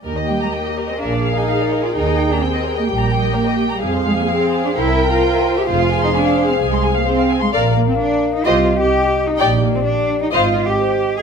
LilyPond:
<<
  \new Staff \with { instrumentName = "Violin section" } { \time 4/4 \key ees \major \tempo 4 = 128 ees''2 f''2 | g''1 | f''2 g''2 | f''1 |
f''8 r4. ees''8 r4. | g''8 r4. f''8 r4. | }
  \new Staff \with { instrumentName = "Violin section" } { \time 4/4 \key ees \major bes'16 ees''16 g''16 bes''16 g''16 ees''16 bes'16 ees''16 bes'16 d''16 f''16 aes''16 f''16 d''16 bes'16 d''16 | bes'16 ees''16 g''16 bes''16 g''16 ees''16 bes'16 ees''16 g''16 bes''16 g''16 ees''16 bes'16 ees''16 g''16 bes''16 | aes'16 c''16 f''16 aes''16 f''16 c''16 aes'16 c''16 c''16 e''16 g''16 bes''16 g''16 e''16 c''16 e''16 | c''16 f''16 aes''16 c'''16 aes''16 f''16 c''16 f''16 aes''16 c'''16 aes''16 f''16 c''16 f''16 aes''16 c'''16 |
d''8 r4. c''8 r4. | d''8 r4. ees''8 r4. | }
  \new Staff \with { instrumentName = "French horn section" } { \time 4/4 \key ees \major << { bes'1~ | bes'1 | c''1~ | c''1 |
f''2 ees''2 | d''2 ees''2 | } \\ { g'2 aes'2 | g'1 | aes'2 bes'2 | aes'1 |
bes'2 g'2~ | g'2 c''2 | } >> }
  \new Staff \with { instrumentName = "Viola section" } { \time 4/4 \key ees \major g'2 aes'2~ | aes'2 g'2 | aes'2 bes'2 | aes'1 |
bes'8 r4. g'8 r4. | g'8 r4. c''8 r4. | }
  \new Staff \with { instrumentName = "Cello section" } { \time 4/4 \key ees \major r8 g16 aes16 bes8. c'16 d'8. ees'4 f'16 | ees'8. d'16 c'8. bes16 g8. aes16 bes8. g16 | r8 aes16 bes16 c'8. d'16 e'8. f'4 g'16 | f'8. ees'16 d'8. c'16 aes8. bes16 c'8. aes16 |
r8 bes16 c'16 d'8. ees'16 f'8. g'4 ees'16 | r8 bes16 c'16 d'8. ees'16 f'8. g'4 aes'16 | }
  \new Staff \with { instrumentName = "Double bass section" } { \clef bass \time 4/4 \key ees \major ees,4 r4 bes,,4 r4 | ees,4 r4 bes,,4 r4 | f,4 r4 c,4 r4 | f,,4 r4 c,4 r4 |
bes,,4 r4 c,4 r4 | bes,,4 r4 aes,,4 r4 | }
>>